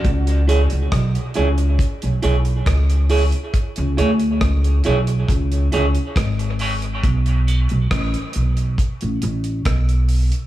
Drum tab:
HH |xxxxxxxxxxxxxxox|xxxxxxxxxxxxxxox|xxxxxxxxxxxxxxox|
SD |----r-------r---|----r-------r---|----r-------r---|
BD |o---o---o---o---|o---o---o---o---|o---o---o---o---|